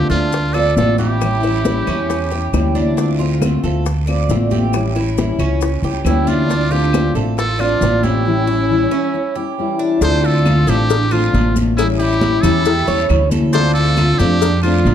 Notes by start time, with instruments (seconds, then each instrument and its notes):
Already playing: steel-string acoustic guitar D3 A3 C4
0.10 upright bass D2, steel-string acoustic guitar A3 C4 F4, violin section D4, muted trumpet F4, cuban tres A4, high bongo, high conga, short guiro, maracas
0.32 muted steel-string acoustic guitar stroke, high bongo, high conga, long guiro, maracas
0.54 steel-string acoustic guitar A3 C4 F4, violin section F4, muted trumpet A4, cuban tres D5, high bongo, high conga, claves, maracas
0.77 upright bass A1, steel-string acoustic guitar D3 A3 C4 F4, violin section F4, muted trumpet A4, high bongo, low bongo, high conga, short guiro, maracas
0.98 violin section E4, cuban tres G4, muted trumpet G4, high conga, short guiro, maracas
1.21 steel-string acoustic guitar E3 G3 C#4 E4, high bongo, high conga, long guiro, claves, maracas
1.43 steel-string acoustic guitar G3 C#4 E4, cuban tres E4, high bongo, high conga, maracas
1.65 steel-string acoustic guitar E3 G3 C#4 E4, high bongo, high conga, short guiro, maracas
1.87 upright bass E2, steel-string acoustic guitar G3 C#4 E4, cuban tres C#4, high bongo, high conga, short guiro, claves, maracas
2.09 muted steel-string acoustic guitar stroke, high bongo, high conga, long guiro, maracas
2.31 steel-string acoustic guitar G3 C#4 E4, cuban tres G4, high bongo, high conga, maracas
2.53 upright bass D2, steel-string acoustic guitar E3 G3 C#4 E4, high bongo, low bongo, high conga, short guiro, claves, maracas
2.75 cuban tres D4, high conga, short guiro, maracas
2.97 steel-string acoustic guitar D3 A3 C4 F4, cuban tres D4, high bongo, high conga, long guiro, maracas
3.19 steel-string acoustic guitar A3 C4 F4, cuban tres F4, high bongo, high conga, maracas
3.42 steel-string acoustic guitar D3 A3 C4 F4, high bongo, high conga, short guiro, claves, maracas
3.64 upright bass D2, steel-string acoustic guitar A3 C4 F4, cuban tres A4, high bongo, high conga, short guiro, maracas
3.86 muted steel-string acoustic guitar stroke, high bongo, high conga, long guiro, maracas
4.07 steel-string acoustic guitar A3 C4 F4, cuban tres D5, high bongo, high conga, claves, maracas
4.29 upright bass A1, steel-string acoustic guitar D3 A3 C4 F4, high bongo, low bongo, high conga, short guiro, maracas
4.51 cuban tres G4, high conga, short guiro, maracas
4.73 steel-string acoustic guitar E3 G3 C#4 E4, high bongo, high conga, long guiro, claves, maracas
4.95 steel-string acoustic guitar G3 C#4 E4, cuban tres E4, high bongo, high conga, maracas
5.18 steel-string acoustic guitar E3 G3 C#4 E4, high bongo, high conga, short guiro, maracas
5.39 upright bass C#2, steel-string acoustic guitar G3 C#4 E4, cuban tres C#4, high bongo, high conga, short guiro, claves, maracas
5.61 muted steel-string acoustic guitar stroke, high bongo, high conga, long guiro, maracas
5.82 upright bass C#2, steel-string acoustic guitar G3 C#4 E4, cuban tres G4, high bongo, high conga, maracas
6.05 upright bass D2, steel-string acoustic guitar E3 G3 C#4 E4, violin section C#4, muted trumpet E4, high bongo, low bongo, high conga, short guiro, claves, maracas
6.27 cuban tres D4, violin section D4, muted trumpet F4, high conga, short guiro, maracas
6.49 steel-string acoustic guitar D3 A3 C4 F4, cuban tres D4, high bongo, high conga, long guiro, maracas
6.71 steel-string acoustic guitar A3 C4 F4, violin section D4, cuban tres F4, muted trumpet G4, high bongo, high conga, maracas
6.93 steel-string acoustic guitar D3 A3 C4 F4, high bongo, high conga, short guiro, claves, maracas
7.15 upright bass A1, steel-string acoustic guitar A3 C4 F4, cuban tres A4, high bongo, high conga, short guiro, maracas
7.37 violin section F4, muted trumpet A4, muted steel-string acoustic guitar stroke, high bongo, high conga, long guiro, maracas
7.59 steel-string acoustic guitar A3 C4 F4, violin section D4, muted trumpet F4, cuban tres D5, high bongo, high conga, claves, maracas
7.81 upright bass A1, steel-string acoustic guitar D3 A3 C4 F4, high bongo, low bongo, high conga, short guiro, maracas
8.03 violin section C#4, muted trumpet E4, cuban tres G4, high conga, short guiro, maracas
8.26 steel-string acoustic guitar E3 G3 C#4 E4
8.47 steel-string acoustic guitar G3 C#4 E4, cuban tres E4
8.70 steel-string acoustic guitar E3 G3 C#4 E4
8.91 steel-string acoustic guitar G3 C#4 E4, cuban tres C#4
9.14 muted steel-string acoustic guitar stroke
9.36 steel-string acoustic guitar G3 C#4 E4, cuban tres G4
9.58 steel-string acoustic guitar E3 G3 C#4 E4
9.79 cuban tres D4
10.01 upright bass D2, steel-string acoustic guitar D3 A3 C4 F4, cuban tres D4, violin section A4, muted trumpet C5, cowbell, high conga, long guiro, maracas
10.24 violin section F4, muted trumpet A4, high conga, maracas
10.46 steel-string acoustic guitar D3 A3 C4 F4, cuban tres F4, cowbell, high conga, short guiro, claves, maracas
10.67 upright bass A1, steel-string acoustic guitar A3 C4 F4, violin section D4, muted trumpet G4, cuban tres A4, cowbell, high conga, short guiro, maracas
10.90 muted steel-string acoustic guitar stroke, cowbell, high conga, long guiro, maracas
11.11 steel-string acoustic guitar A3 C4 F4, violin section D4, cuban tres F4, muted trumpet F4, high conga, claves, maracas
11.33 upright bass A1, steel-string acoustic guitar D3 A3 C4 F4, cowbell, high conga, short guiro, maracas
11.56 high conga, short guiro, maracas
11.77 steel-string acoustic guitar E3 G3 C#4 E4, violin section C#4, muted trumpet E4, cowbell, long guiro, claves, maracas
11.98 violin section E4, cuban tres E4, muted trumpet G4, high conga, maracas
12.21 steel-string acoustic guitar E3 G3 C#4 E4, cowbell, high conga, short guiro, maracas
12.41 upright bass E2, steel-string acoustic guitar C#4 E4, violin section E4, cuban tres G4, muted trumpet A4, cowbell, low conga, short guiro, claves, maracas
12.46 steel-string acoustic guitar G3
12.65 muted steel-string acoustic guitar stroke, cowbell, high conga, long guiro, maracas
12.88 upright bass E2, steel-string acoustic guitar G3 C#4 E4, cuban tres C#5, high conga, maracas
13.09 upright bass D2, steel-string acoustic guitar E3 G3 C#4 E4, cowbell, high conga, short guiro, claves, maracas
13.31 cuban tres A4, high conga, short guiro, maracas
13.53 steel-string acoustic guitar D3 A3 C4 F4, cuban tres D4, violin section A4, muted trumpet C5, cowbell, high conga, long guiro, maracas
13.74 violin section F4, muted trumpet A4, high conga, maracas
13.97 steel-string acoustic guitar D3 A3 C4 F4, cuban tres F4, cowbell, high conga, short guiro, claves, maracas
14.18 upright bass F2, steel-string acoustic guitar A3 C4 F4, violin section D4, muted trumpet G4, cuban tres A4, cowbell, high conga, short guiro, maracas
14.41 muted steel-string acoustic guitar stroke, cowbell, high conga, long guiro, maracas
14.62 steel-string acoustic guitar C4 F4, violin section D4, muted trumpet F4, cuban tres F4, high conga, claves, maracas
14.66 steel-string acoustic guitar A3
14.85 upright bass A1, steel-string acoustic guitar D3 A3 C4 F4, cowbell, high conga, short guiro, maracas